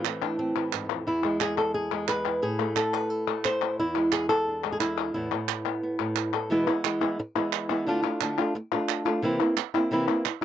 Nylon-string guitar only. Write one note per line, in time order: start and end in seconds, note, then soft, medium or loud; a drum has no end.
0.00 1.07 A2 medium
0.00 0.56 E3 medium
0.00 0.22 C4 soft
0.07 1.06 A3 soft
0.22 0.39 D4 medium
0.39 1.07 C4 medium
0.56 1.24 E3 medium
0.73 0.90 G#2 medium
0.91 1.06 F2 medium
1.07 2.43 E2 medium
1.07 1.40 E4 medium
1.24 1.90 G#3 medium
1.41 1.57 G#4 medium
1.58 1.74 A4 medium
1.74 2.08 G#4 medium
1.92 2.41 G#3 medium
2.09 2.42 B4 loud
2.27 3.62 E4 soft
2.42 3.78 A2 medium
2.42 2.76 G#4 medium
2.59 3.26 A3 medium
2.76 2.94 A4 medium
2.94 3.10 B4 loud
3.10 3.44 A4 loud
3.27 3.77 A3 medium
3.45 3.79 C5 loud
3.63 3.80 E4 soft
3.80 5.15 E2 medium
3.80 4.12 E4 medium
3.96 4.63 G#3 medium
4.13 4.29 G#4 medium
4.29 4.72 A4 loud
4.48 5.13 D4 soft
4.64 5.13 G#3 medium
4.72 4.80 G#4 medium
4.80 5.13 E4 loud
4.97 5.14 F4 medium
5.14 5.32 E2 medium
5.14 5.30 A2 soft
5.14 5.65 B3 soft
5.14 6.33 E4 medium
5.32 5.98 A2 medium
5.66 5.82 B3 soft
5.83 6.49 B3 soft
6.00 6.50 A2 medium
6.34 6.49 A4 soft
6.50 6.67 E2 medium
6.50 6.67 B2 medium
6.50 6.67 E3 medium
6.50 6.67 G#3 medium
6.50 6.67 B3 medium
6.50 6.66 E4 medium
6.67 6.83 E3 soft
6.67 6.83 G#3 soft
6.67 6.84 B3 medium
6.67 6.83 E4 medium
6.84 7.01 E3 medium
6.84 7.01 G#3 medium
6.84 7.00 B3 medium
6.84 7.00 E4 medium
7.01 7.18 E3 soft
7.01 7.18 G#3 soft
7.01 7.18 B3 medium
7.01 7.17 E4 medium
7.19 muted nylon-string guitar stroke medium
7.35 7.70 E3 soft
7.35 7.69 G#3 soft
7.35 7.69 B3 soft
7.35 7.68 E4 soft
7.69 7.86 E3 soft
7.69 7.87 G#3 medium
7.69 7.86 B3 medium
7.69 7.86 E4 soft
7.87 8.03 D3 medium
7.87 8.03 A3 medium
7.87 8.03 D4 medium
7.87 8.01 F4 medium
8.02 8.21 A3 soft
8.02 8.20 D4 soft
8.02 8.19 F4 medium
8.21 8.37 D3 soft
8.21 8.38 A3 medium
8.21 8.38 D4 medium
8.21 8.37 F4 medium
8.38 8.54 A3 soft
8.38 8.55 D4 medium
8.38 8.54 F4 medium
8.55 muted nylon-string guitar stroke medium
8.72 9.06 A3 soft
8.72 9.05 D4 medium
8.72 9.04 F4 soft
9.05 9.23 A3 soft
9.05 9.22 D4 soft
9.05 9.22 F4 medium
9.22 9.39 C3 medium
9.22 9.39 E3 medium
9.22 9.39 A#3 medium
9.22 9.40 C4 medium
9.22 9.39 E4 medium
9.40 9.56 A#3 soft
9.40 9.56 C4 medium
9.40 9.56 E4 medium
9.56 muted nylon-string guitar stroke medium
9.74 9.91 A#3 soft
9.74 9.91 C4 medium
9.74 9.90 E4 medium
9.91 10.07 C3 medium
9.91 10.08 E3 medium
9.91 10.08 A#3 medium
9.91 10.08 C4 medium
9.91 10.06 E4 medium
10.07 10.25 A#3 soft
10.07 10.25 C4 soft
10.07 10.24 E4 soft
10.25 muted nylon-string guitar stroke medium
10.41 10.45 E4 medium